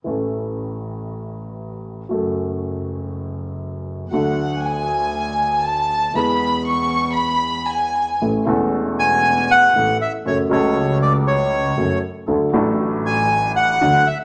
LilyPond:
<<
  \new Staff \with { instrumentName = "Violin section" } { \time 4/4 \key a \major \tempo 4 = 118 r1 | r1 | fis''4 gis''2 a''4 | b''4 cis'''4 b''4 gis''4 |
r1 | r1 | r1 | }
  \new Staff \with { instrumentName = "Bandoneon" } { \time 4/4 \key a \major r1 | r1 | r1 | r1 |
r4. gis''4 fis''4 e''8 | cis''8 cis''4 d''8 cis''4. r8 | r4. gis''4 fis''4 e''8 | }
  \new Staff \with { instrumentName = "Grand piano" } { \time 4/4 \key a \major <a,, a, e a cis' a'>1 | <fis, fis a cis' a'>1 | <d, d fis a d' a'>1 | <e, e gis b gis'>1 |
<a,, a, e a cis' a'>8 <e,, e, e a cis' a'>2~ <e,, e, e a cis' a'>8 <a,, a, e a cis' a'>8 r8 | <fis, fis a cis' a'>8 <cis, cis fis a cis' a'>2~ <cis, cis fis a cis' a'>8 <fis, fis a cis' a'>8 r8 | <d, d fis a d' a'>8 <a,, a, fis a d' a'>2~ <a,, a, fis a d' a'>8 <d, d fis a d' a'>8 r8 | }
  \new Staff \with { instrumentName = "Double bass" } { \clef bass \time 4/4 \key a \major a,,1 | fis,,1 | d,1 | e,2. r4 |
a,,8 e,,2~ e,,8 a,,8 r8 | fis,,8 cis,2~ cis,8 fis,,8 r8 | d,8 a,,2~ a,,8 d,8 r8 | }
>>